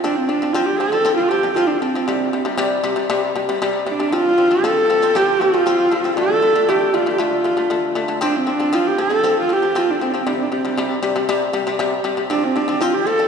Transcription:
0.04 shamisen F3 C4, horsehead fiddle D4
0.16 horsehead fiddle C4
0.28 shamisen F3 C4, horsehead fiddle D4
0.42 shamisen F3 C4
0.53 shamisen F3 C4, horsehead fiddle F4
0.66 horsehead fiddle G4
0.79 shamisen F3 C4, horsehead fiddle A4
0.92 shamisen F3 C4
1.05 shamisen F3 C4
1.16 horsehead fiddle F4
1.29 shamisen F3 C4, horsehead fiddle G4
1.43 shamisen F3 C4
1.53 shamisen F3 C4, horsehead fiddle F4 G4
1.67 horsehead fiddle D4
1.81 shamisen F3 C4, horsehead fiddle C4
1.95 shamisen F3 C4
2.08 shamisen C3 G3
2.33 shamisen C3 G3
2.45 shamisen C3 G3
2.57 shamisen C3 G3
2.84 shamisen C3 G3
2.96 shamisen C3 G3
3.10 shamisen C3 G3
3.36 shamisen C3 G3
3.49 shamisen C3 G3
3.62 shamisen C3 G3
3.86 shamisen C3 G3, horsehead fiddle D4
4.00 shamisen C3 G3
4.12 shamisen F3 C4, horsehead fiddle F4
4.38 shamisen F3 C4
4.51 shamisen F3 C4
4.64 shamisen F3 C4, horsehead fiddle A4
4.90 shamisen F3 C4
5.02 shamisen F3 C4
5.15 shamisen F3 C4, horsehead fiddle G4
5.41 shamisen F3 C4, horsehead fiddle F4
5.54 shamisen F3 C4
5.66 shamisen F3 C4
5.92 shamisen F3 C4
6.04 shamisen F3 C4
6.17 shamisen D3 A3, horsehead fiddle A4
6.42 shamisen D3 A3
6.55 shamisen D3 A3
6.68 shamisen D3 A3, horsehead fiddle G4
6.94 shamisen D3 A3, horsehead fiddle F4
7.06 shamisen D3 A3
7.12 horsehead fiddle G4
7.18 shamisen D3 A3, horsehead fiddle F4
7.44 shamisen D3 A3
7.57 shamisen D3 A3
7.70 shamisen D3 A3
7.95 shamisen D3 A3
8.08 shamisen D3 A3
8.21 shamisen F3 C4, horsehead fiddle D4
8.36 horsehead fiddle C4
8.47 shamisen F3 C4, horsehead fiddle D4
8.60 shamisen F3 C4
8.73 shamisen F3 C4, horsehead fiddle F4
8.87 horsehead fiddle G4
8.98 shamisen F3 C4, horsehead fiddle A4
9.10 shamisen F3 C4
9.24 shamisen F3 C4
9.40 horsehead fiddle F4
9.49 shamisen F3 C4, horsehead fiddle G4
9.62 shamisen F3 C4
9.75 shamisen F3 C4, horsehead fiddle F4
9.91 horsehead fiddle D4
10.01 shamisen F3 C4, horsehead fiddle C4
10.10 shamisen F3, horsehead fiddle D4
10.14 shamisen C4
10.19 horsehead fiddle C4
10.27 shamisen C3 G3, horsehead fiddle D4
10.34 horsehead fiddle C4
10.42 horsehead fiddle D4
10.50 shamisen C3 G3, horsehead fiddle C4
10.65 shamisen C3 G3
10.78 shamisen C3 G3
11.03 shamisen C3 G3
11.16 shamisen C3 G3
11.29 shamisen C3 G3
11.53 shamisen C3 G3
11.67 shamisen C3 G3
11.79 shamisen C3 G3
12.04 shamisen C3 G3
12.17 shamisen C3 G3
12.30 shamisen F3 C4, horsehead fiddle D4
12.44 horsehead fiddle C4
12.56 shamisen F3 C4, horsehead fiddle D4
12.68 shamisen F3 C4
12.81 shamisen F3 C4, horsehead fiddle F4
12.94 horsehead fiddle G4
13.07 shamisen F3 C4, horsehead fiddle A4
13.19 shamisen F3 C4

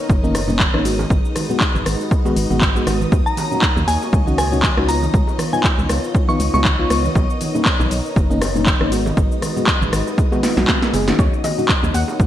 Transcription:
Already playing: analog synth pad B3 D#4 A#4 C#5, string machine D#4 D#5
0.10 fm bass F#1, kick, high bongo, shaker
0.23 fm electric piano A#3 C#4 D#4, high conga, shaker
0.35 cross-stick, open hi-hat, high bongo, shaker
0.48 fm electric piano A#3 C#4 D#4, low conga, shaker
0.60 kick, clap, high conga, shaker
0.74 fm bass G#1, fm electric piano A#3 C#4 D#4, cross-stick, high bongo
0.85 fm electric piano G#3 B3 F#4, analog synth pad G#3 F#4 B4, open hi-hat, shaker
0.99 high bongo, high conga, shaker
1.10 fm bass G#1, kick, shaker
1.25 shaker
1.35 cross-stick, open hi-hat, high bongo, high conga, shaker
1.49 fm electric piano G#3 B3 F#4, low conga, shaker
1.60 kick, clap, high bongo, shaker
1.75 fm bass G#1, high conga, low conga, shaker
1.86 fm bass G#1, cross-stick, open hi-hat, shaker
2.01 high bongo, shaker
2.11 kick, shaker
2.25 fm electric piano G#3 B3 F#4, high bongo, high conga, shaker
2.36 fm bass G#1, open hi-hat, shaker
2.50 fm bass G#1, fm electric piano G#3 B3 F#4, low conga, shaker
2.61 kick, clap, high bongo, high conga, shaker
2.75 fm electric piano G#3 B3 F#4, shaker
2.87 fm bass G#1, fm electric piano G#3 B3 F#4, cross-stick, open hi-hat, high bongo, shaker
3.01 high conga, shaker
3.12 fm bass D#2, analog synth pad A#3 C#5, kick, high bongo, shaker
3.26 synth bell A#5, shaker
3.37 open hi-hat, high bongo, high conga, shaker
3.51 fm electric piano C#4 D#4 F#4, low conga, shaker
3.62 kick, clap, shaker
3.76 fm bass D#2, high bongo, high conga, low conga, shaker
3.88 fm bass D#2, synth bell G#5, open hi-hat, shaker
4.02 high bongo, shaker
4.13 fm bass C#2, kick, shaker
4.27 fm electric piano C#4 D#4 F#4, high conga, shaker
4.38 synth bell G#5, cross-stick, open hi-hat, high bongo, shaker
4.52 fm electric piano C#4 D#4 F#4, low conga, shaker
4.63 kick, clap, high bongo, high conga, shaker
4.77 fm bass C#2, fm electric piano C#4 D#4 F#4, cross-stick
4.88 fm electric piano B3 D#4 F4, analog synth pad B3 F4 C#5, synth bell A#5, open hi-hat, shaker
5.02 high bongo, high conga, shaker
5.14 fm bass C#2, kick, shaker
5.27 high bongo, shaker
5.38 cross-stick, open hi-hat, high conga, shaker
5.53 fm electric piano B3 D#4 F4, synth bell G#5, low conga, shaker
5.64 kick, clap, high bongo, shaker
5.78 fm bass C#2, high conga, low conga, shaker
5.89 fm bass C#2, cross-stick, open hi-hat, high bongo, shaker
6.04 shaker
6.15 kick, shaker
6.28 fm electric piano B3 D#4 F4, synth bell C#6, high bongo, high conga, shaker
6.40 fm bass C#2, open hi-hat, shaker
6.53 fm bass C#2, fm electric piano B3 D#4 F4, synth bell C#6, high bongo, low conga, shaker
6.65 kick, clap, high conga, shaker
6.79 fm electric piano B3 D#4 F4
6.90 fm bass C#2, fm electric piano B3 D#4 F4, cross-stick, open hi-hat, high bongo, shaker
7.05 high conga, shaker
7.15 fm bass B1, analog synth pad D#4 A#4, kick, high bongo, shaker
7.30 shaker
7.41 open hi-hat, high conga, shaker
7.54 fm electric piano A#3 C#4 D#4, high bongo, low conga, shaker
7.65 kick, clap, shaker
7.79 fm bass B1, high bongo, high conga, low conga, shaker
7.91 fm bass B1, open hi-hat, shaker
8.06 shaker
8.16 fm bass F#1, kick, high bongo, shaker
8.30 fm electric piano A#3 C#4 D#4, high conga, shaker
8.42 cross-stick, open hi-hat, high bongo, shaker
8.55 fm electric piano A#3 C#4 D#4, low conga, shaker
8.66 kick, clap, high conga, shaker
8.80 fm bass G#1, fm electric piano A#3 C#4 D#4, cross-stick, high bongo
8.92 fm electric piano G#3 B3 F#4, analog synth pad G#3 F#4 B4, open hi-hat, shaker
9.06 high bongo, high conga, shaker
9.17 fm bass G#1, kick, shaker
9.32 shaker
9.42 cross-stick, open hi-hat, high bongo, high conga, shaker
9.56 fm electric piano G#3 B3 F#4, low conga, shaker
9.67 kick, clap, high bongo, shaker
9.81 fm bass G#1, high conga, low conga, shaker
9.93 fm bass G#1, cross-stick, open hi-hat, shaker
10.07 high bongo, shaker
10.18 kick, shaker
10.32 fm electric piano G#3 B3 F#4, high bongo, high conga, shaker
10.43 fm electric piano G#3 B3 F4, snare, open hi-hat, shaker
10.57 fm bass B1, fm electric piano G#3 B3 F#4, snare, low conga, shaker
10.68 kick, snare, clap, high bongo, high conga, shaker
10.82 fm electric piano G#3 B3 A#4, snare, shaker
10.93 fm bass F#1, fm electric piano G#3 B3 G#4, open hi-hat, high bongo, shaker
11.07 fm electric piano C#4 D#4 F#4, snare, high conga, shaker
11.19 fm bass D#2, analog synth pad A#3 C#5, string machine D#4 D#5, synth pluck C#5, kick, high bongo, shaker
11.33 shaker
11.44 synth pluck D#5, open hi-hat, high bongo, high conga, shaker
11.58 fm electric piano C#4 D#4 F#4, low conga, shaker
11.69 kick, clap, shaker
11.83 fm bass D#2, high bongo, high conga, low conga, shaker
11.94 fm bass D#2, synth pluck F#5, open hi-hat, shaker
12.08 high bongo, shaker
12.20 fm bass C#2, kick, shaker

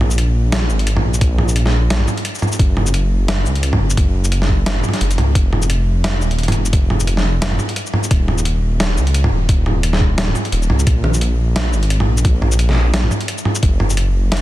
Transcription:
Already playing: detuned saw bass A#1
0.01 mid tom
0.10 shaker
0.18 closed hi-hat
0.52 snare, closed hi-hat
0.70 detuned saw bass G#1, shaker
0.79 closed hi-hat
0.87 closed hi-hat
0.97 mid tom
1.04 detuned saw bass A#1
1.14 shaker
1.21 detuned saw bass A#1, kick, closed hi-hat
1.38 mid tom
1.48 shaker
1.56 closed hi-hat
1.66 snare
1.90 snare, closed hi-hat
2.00 mid tom
2.08 mid tom, shaker
2.18 closed hi-hat
2.25 closed hi-hat
2.35 shaker
2.39 mid tom, shaker
2.42 shaker
2.47 shaker
2.52 shaker
2.59 detuned saw bass F#1, kick, closed hi-hat
2.77 mid tom
2.86 shaker
2.94 closed hi-hat
3.28 snare, closed hi-hat
3.46 detuned saw bass C#2, shaker
3.55 closed hi-hat
3.63 closed hi-hat
3.73 mid tom
3.80 detuned saw bass F#1
3.90 shaker
3.97 detuned saw bass F#1, kick, closed hi-hat
4.24 shaker
4.32 closed hi-hat
4.42 snare
4.49 kick
4.66 snare, closed hi-hat
4.76 mid tom
4.80 mid tom
4.84 mid tom, shaker
4.89 mid tom
4.94 snare, closed hi-hat
5.01 detuned saw bass F#1, closed hi-hat
5.11 closed hi-hat, shaker
5.18 detuned saw bass C#2, closed hi-hat, mid tom
5.35 detuned saw bass F1, kick, closed hi-hat
5.53 mid tom
5.62 shaker
5.70 closed hi-hat
6.04 snare, closed hi-hat
6.21 detuned saw bass D#1, shaker
6.31 closed hi-hat
6.39 closed hi-hat
6.43 closed hi-hat
6.48 closed hi-hat, mid tom
6.52 detuned saw bass F1, closed hi-hat
6.65 shaker
6.73 detuned saw bass F1, kick, closed hi-hat
6.90 mid tom
7.00 shaker
7.07 closed hi-hat
7.17 snare
7.42 snare, closed hi-hat
7.52 mid tom
7.59 mid tom, shaker
7.69 closed hi-hat
7.76 closed hi-hat
7.86 shaker
7.94 mid tom
8.03 shaker
8.11 detuned saw bass D#1, kick, closed hi-hat
8.28 mid tom
8.38 shaker
8.45 closed hi-hat
8.80 snare, closed hi-hat
8.97 detuned saw bass C#2, shaker
9.07 closed hi-hat
9.14 closed hi-hat
9.24 mid tom
9.32 detuned saw bass D#1
9.49 detuned saw bass D#1, kick, closed hi-hat
9.66 mid tom
9.83 closed hi-hat
9.93 snare
10.01 kick
10.18 snare, closed hi-hat
10.28 mid tom
10.35 mid tom, shaker
10.45 closed hi-hat
10.52 detuned saw bass D#1, closed hi-hat
10.62 shaker
10.70 detuned saw bass C#2, mid tom
10.79 shaker
10.87 detuned saw bass A#1, kick, closed hi-hat
11.04 mid tom
11.14 shaker
11.21 closed hi-hat
11.56 snare, closed hi-hat
11.73 detuned saw bass G#1, shaker
11.83 closed hi-hat
11.90 closed hi-hat
12.00 mid tom
12.08 detuned saw bass A#1
12.17 shaker
12.25 detuned saw bass A#1, kick, closed hi-hat
12.42 mid tom
12.52 shaker
12.59 closed hi-hat
12.69 snare
12.94 snare, closed hi-hat
13.03 mid tom
13.11 mid tom, shaker
13.21 closed hi-hat
13.28 closed hi-hat
13.38 shaker
13.45 mid tom
13.55 shaker
13.63 detuned saw bass F#1, kick, closed hi-hat
13.80 mid tom
13.90 shaker
13.97 closed hi-hat
14.32 snare, closed hi-hat
14.37 closed hi-hat

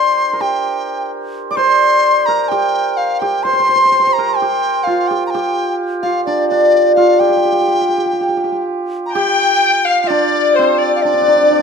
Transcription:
Already playing: hammered dulcimer D4 G4 A#4 C5 D5, dizi C6
0.33 hammered dulcimer A#4
0.40 hammered dulcimer G4, dizi G5
1.51 hammered dulcimer D5, dizi D6
1.56 hammered dulcimer C5, dizi C6
2.26 hammered dulcimer A#4, dizi A#5
2.44 dizi A#5
2.49 hammered dulcimer G4, dizi G5
2.97 dizi F5
3.20 hammered dulcimer G4, dizi G5
3.43 hammered dulcimer C5, dizi C6
3.53 hammered dulcimer C5
3.60 hammered dulcimer C5
3.69 hammered dulcimer C5
3.76 hammered dulcimer C5
3.85 hammered dulcimer C5
3.92 hammered dulcimer C5
3.99 hammered dulcimer C5
4.07 hammered dulcimer C5
4.13 dizi A#5
4.18 hammered dulcimer A#4
4.37 dizi G5
4.42 hammered dulcimer G4
4.84 hammered dulcimer F4, dizi F5
5.08 hammered dulcimer G4, dizi G5
5.27 dizi A#5
5.31 hammered dulcimer G4, dizi G5
6.02 hammered dulcimer F4, dizi F5
6.26 hammered dulcimer D4, dizi D5
6.49 hammered dulcimer D4, dizi D5
6.95 hammered dulcimer F4, dizi F5
7.20 hammered dulcimer G4, dizi G5
7.29 hammered dulcimer G4
7.37 hammered dulcimer G4
7.45 hammered dulcimer G4
7.52 hammered dulcimer G4
7.61 hammered dulcimer G4
7.68 hammered dulcimer G4
7.74 hammered dulcimer G4
7.81 hammered dulcimer G4
7.89 hammered dulcimer G4
7.98 hammered dulcimer G4
8.06 hammered dulcimer G4
8.13 hammered dulcimer G4
8.21 hammered dulcimer G4
8.29 hammered dulcimer G4
8.37 hammered dulcimer G4
8.44 hammered dulcimer G4
8.52 hammered dulcimer G4
9.06 dizi A#5
9.12 hammered dulcimer G4, erhu G5, dizi G5
9.85 dizi F5, erhu F5
10.02 hammered dulcimer F4, erhu F5
10.07 hammered dulcimer D4, dizi D5, erhu D5
10.54 dizi C5, erhu C5
10.59 hammered dulcimer C4
10.78 erhu D5, dizi D5
10.95 dizi F5
11.03 hammered dulcimer D4, dizi D5, erhu D5
11.14 hammered dulcimer D4
11.21 hammered dulcimer D4
11.28 hammered dulcimer D4
11.36 hammered dulcimer D4
11.43 hammered dulcimer D4
11.51 hammered dulcimer D4
11.59 hammered dulcimer D4

